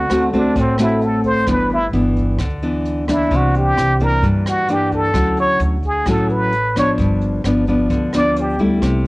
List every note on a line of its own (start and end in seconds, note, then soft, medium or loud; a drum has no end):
0.00 0.54 D3 medium
0.00 0.35 F#4 medium
0.10 0.52 D2 medium
0.10 0.29 A3 medium
0.10 0.30 C4 medium
0.10 0.30 F#4 medium
0.10 cross-stick medium
0.10 closed hi-hat soft
0.33 0.75 A3 medium
0.33 0.76 C4 medium
0.33 0.61 D4 medium
0.33 0.76 F#4 medium
0.33 kick soft
0.33 closed hi-hat soft
0.56 1.43 A1 medium
0.56 1.46 A2 medium
0.56 kick medium
0.56 closed hi-hat soft
0.60 0.81 C4 medium
0.78 1.44 A3 medium
0.78 1.44 C4 medium
0.78 1.06 E4 medium
0.78 1.44 F#4 medium
0.78 cross-stick medium
0.78 closed hi-hat soft
1.01 1.25 A4 medium
1.01 closed hi-hat soft
1.24 1.53 C5 medium
1.24 kick soft
1.24 closed hi-hat soft
1.47 1.90 G1 medium
1.47 2.37 G2 medium
1.47 1.77 E3 medium
1.47 1.78 B3 medium
1.47 1.78 D4 medium
1.47 kick medium
1.47 cross-stick medium
1.47 closed hi-hat soft
1.51 1.72 B4 medium
1.70 closed hi-hat soft
1.74 1.87 E4 medium
1.93 2.36 G1 medium
1.93 2.39 E3 medium
1.93 2.40 B3 medium
1.93 2.40 D4 medium
1.93 closed hi-hat soft
2.16 kick soft
2.16 closed hi-hat soft
2.39 3.27 D2 medium
2.39 3.29 D3 medium
2.39 kick medium
2.39 cross-stick medium
2.39 closed hi-hat soft
2.62 3.05 E3 medium
2.62 3.05 B3 medium
2.62 3.05 D4 medium
2.62 closed hi-hat soft
2.85 closed hi-hat soft
3.08 3.96 E3 medium
3.08 3.97 A#3 medium
3.08 3.97 D4 medium
3.08 3.38 E4 medium
3.08 kick soft
3.08 cross-stick medium
3.08 closed hi-hat soft
3.31 3.74 C2 medium
3.31 4.21 C3 medium
3.31 kick medium
3.31 closed hi-hat soft
3.36 3.57 F#4 medium
3.55 4.05 G4 medium
3.55 closed hi-hat soft
3.77 4.20 C2 medium
3.77 cross-stick medium
3.77 closed hi-hat soft
4.00 4.66 E3 medium
4.00 4.65 A#3 medium
4.00 4.66 D4 medium
4.00 4.25 A#4 loud
4.00 kick soft
4.00 closed hi-hat soft
4.22 5.10 G2 medium
4.22 5.13 G2 medium
4.22 kick medium
4.22 closed hi-hat soft
4.46 4.74 F#4 medium
4.46 cross-stick medium
4.46 closed hi-hat soft
4.68 5.11 E3 medium
4.68 5.11 A#3 medium
4.68 5.11 D4 medium
4.68 closed hi-hat soft
4.73 4.94 G4 medium
4.91 5.36 A4 medium
4.91 kick soft
4.91 closed hi-hat soft
5.14 5.57 D2 medium
5.14 6.04 D3 medium
5.14 5.76 F#3 medium
5.14 5.77 C#4 medium
5.14 5.77 E4 medium
5.14 kick medium
5.14 cross-stick medium
5.14 closed hi-hat soft
5.37 5.60 C#5 loud
5.37 closed hi-hat soft
5.60 6.03 D2 medium
5.60 closed hi-hat soft
5.83 6.12 G#4 medium
5.83 kick soft
5.83 closed hi-hat soft
6.06 6.94 A1 medium
6.06 6.96 A2 medium
6.06 6.52 F#3 medium
6.06 6.53 C#4 medium
6.06 6.53 E4 medium
6.06 kick medium
6.06 cross-stick medium
6.06 closed hi-hat soft
6.10 6.33 A4 medium
6.29 6.76 B4 medium
6.29 closed hi-hat soft
6.52 closed hi-hat soft
6.75 7.41 F3 medium
6.75 7.41 B3 medium
6.75 7.41 D4 medium
6.75 6.91 C#5 medium
6.75 kick soft
6.75 cross-stick medium
6.75 closed hi-hat soft
6.98 7.41 G1 medium
6.98 7.88 G2 medium
6.98 kick medium
6.98 closed hi-hat soft
7.21 closed hi-hat soft
7.44 7.87 G1 medium
7.44 7.64 F3 medium
7.44 7.64 B3 medium
7.44 7.65 D4 medium
7.44 cross-stick medium
7.44 closed hi-hat soft
7.67 8.10 F3 medium
7.67 8.10 B3 medium
7.67 8.10 D4 medium
7.67 kick soft
7.67 closed hi-hat soft
7.90 8.78 D2 medium
7.90 8.80 D3 medium
7.90 kick medium
7.90 closed hi-hat soft
8.13 8.56 F3 medium
8.13 8.56 B3 medium
8.13 8.56 D4 medium
8.13 8.42 D5 medium
8.13 cross-stick medium
8.13 closed hi-hat soft
8.36 closed hi-hat soft
8.40 8.61 G4 medium
8.58 9.07 G3 medium
8.58 9.07 A3 medium
8.58 9.07 E4 medium
8.58 kick soft
8.58 closed hi-hat soft
8.82 9.07 C2 medium
8.82 9.07 C3 medium
8.82 kick medium
8.82 cross-stick medium
8.82 closed hi-hat soft